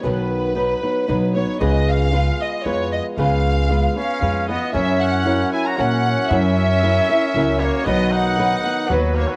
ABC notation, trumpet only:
X:1
M:3/4
L:1/16
Q:1/4=115
K:B
V:1 name="Trumpet"
z12 | z12 | z6 C4 B,2 | C2 C4 E F C4 |
C8- C2 A,2 | B,2 D6 F,2 A, F, |]